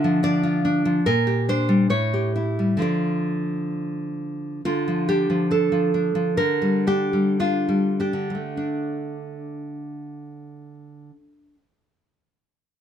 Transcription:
0.00 0.99 D3 medium
0.00 0.22 D4 medium
0.00 0.42 F4 soft
0.00 0.20 E5 medium
0.04 0.84 F3 soft
0.23 0.64 D4 soft
0.23 1.01 D5 medium
0.43 1.04 F4 soft
0.65 1.05 D4 soft
0.85 1.05 F3 soft
1.06 1.87 A#2 medium
1.06 1.45 A#4 medium
1.27 1.90 G4 soft
1.49 1.90 D4 soft
1.49 1.88 C5 medium
1.69 1.89 G3 soft
1.90 2.78 A2 soft
1.90 2.35 C#5 medium
2.14 2.82 G4 soft
2.36 2.81 E4 soft
2.59 2.80 G3 soft
2.77 4.60 D3 soft
2.77 4.61 F3 soft
2.77 4.62 F4 soft
2.82 3.70 D5 medium
4.65 6.35 D3 soft
4.65 5.07 F4 medium
4.88 5.29 F3 soft
5.09 5.50 D4 soft
5.09 5.49 G4 medium
5.30 5.71 F3 soft
5.51 5.93 D4 soft
5.51 6.36 A4 medium
5.72 6.14 F3 soft
5.94 6.39 D4 soft
6.15 6.38 F3 soft
6.37 8.12 D3 soft
6.37 6.85 A#4 medium
6.62 7.12 G3 soft
6.87 7.38 D4 soft
6.87 7.38 G4 medium
7.13 7.67 G3 soft
7.40 7.99 D4 soft
7.40 7.97 F4 medium
7.69 8.29 G3 soft
8.00 8.56 D4 soft
8.00 8.55 G4 medium
8.13 11.10 D3 soft
8.30 8.34 G3 soft
8.35 11.32 A3 soft
8.57 11.54 D4 soft

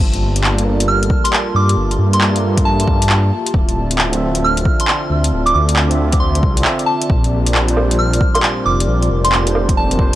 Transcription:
0.00 1.09 G1 loud
0.00 3.51 A#3 medium
0.00 7.07 F4 medium
0.00 3.52 G4 medium
0.00 1.76 D5 medium
0.00 7.07 A5 medium
0.13 closed hi-hat soft
0.36 closed hi-hat medium
0.44 clap loud
0.54 2.30 G3 medium
0.54 2.32 F4 medium
0.58 2.33 A4 medium
0.58 2.35 A#4 medium
0.58 closed hi-hat soft
0.80 closed hi-hat medium
0.88 1.12 F6 medium
1.03 closed hi-hat soft
1.10 kick loud
1.24 1.47 C6 medium
1.24 closed hi-hat medium
1.33 clap loud
1.55 1.76 G2 medium
1.55 1.79 D6 medium
1.69 closed hi-hat medium
1.77 1.98 G1 medium
1.77 3.54 E5 medium
1.91 closed hi-hat soft
1.99 3.31 G2 medium
2.13 2.37 C6 medium
2.13 closed hi-hat medium
2.21 clap loud
2.32 2.84 G3 medium
2.32 2.86 F4 medium
2.32 closed hi-hat soft
2.38 2.87 A4 medium
2.38 2.88 A#4 medium
2.57 kick loud
2.57 closed hi-hat medium
2.65 3.29 A5 medium
2.80 closed hi-hat soft
2.86 2.99 G3 medium
2.86 3.00 F4 medium
2.86 3.00 A4 medium
2.86 3.01 A#4 medium
2.86 kick loud
3.02 closed hi-hat medium
3.09 clap loud
3.46 closed hi-hat medium
3.54 4.65 D1 medium
3.54 10.15 C4 medium
3.54 10.15 D5 medium
3.54 7.07 E5 medium
3.54 kick loud
3.69 closed hi-hat soft
3.91 closed hi-hat medium
3.98 clap loud
4.09 5.86 D3 medium
4.09 5.87 C4 medium
4.09 closed hi-hat soft
4.14 5.88 F4 medium
4.14 5.90 E5 medium
4.35 closed hi-hat medium
4.44 4.68 F6 medium
4.57 closed hi-hat soft
4.65 kick loud
4.80 5.03 C6 medium
4.80 closed hi-hat medium
4.88 clap loud
5.10 5.31 D2 medium
5.24 closed hi-hat medium
5.33 5.54 D1 medium
5.46 5.51 D6 medium
5.46 closed hi-hat soft
5.54 6.42 D2 loud
5.54 5.64 D6 medium
5.69 closed hi-hat medium
5.76 clap loud
5.87 6.40 D3 medium
5.87 6.41 C4 medium
5.87 closed hi-hat soft
5.92 6.42 F4 medium
5.92 6.44 E5 medium
6.12 kick loud
6.12 closed hi-hat soft
6.20 6.44 C6 medium
6.35 closed hi-hat soft
6.43 6.64 C2 medium
6.43 kick loud
6.54 7.07 D3 medium
6.54 7.09 C4 medium
6.54 closed hi-hat medium
6.60 7.10 F4 medium
6.60 7.11 E5 medium
6.65 clap loud
6.79 closed hi-hat soft
6.86 7.15 A5 medium
7.02 closed hi-hat medium
7.10 8.20 A#1 medium
7.10 10.15 F4 medium
7.10 10.15 G4 medium
7.10 10.15 A#4 medium
7.10 kick loud
7.24 closed hi-hat soft
7.46 closed hi-hat medium
7.55 clap loud
7.65 9.41 A#2 medium
7.65 9.43 G3 medium
7.65 closed hi-hat soft
7.70 9.44 D4 medium
7.70 9.45 C5 medium
7.77 low woodblock soft
7.91 closed hi-hat soft
7.99 8.23 F6 medium
8.13 closed hi-hat soft
8.21 kick loud
8.35 8.58 C6 medium
8.35 closed hi-hat soft
8.35 low woodblock soft
8.43 clap loud
8.66 8.87 F1 medium
8.66 8.89 D6 medium
8.80 closed hi-hat medium
8.88 9.09 A#1 loud
9.02 closed hi-hat soft
9.10 10.15 F1 medium
9.24 9.48 C6 medium
9.24 closed hi-hat medium
9.32 clap loud
9.43 9.95 A#2 medium
9.43 9.97 G3 medium
9.43 closed hi-hat soft
9.49 9.98 D4 medium
9.49 9.99 C5 medium
9.55 low woodblock soft
9.69 kick loud
9.69 closed hi-hat soft
9.77 10.15 A5 medium
9.91 closed hi-hat soft
9.97 10.10 A#2 medium
9.97 10.11 G3 medium
9.97 10.12 D4 medium
9.97 10.12 C5 medium
9.97 kick loud

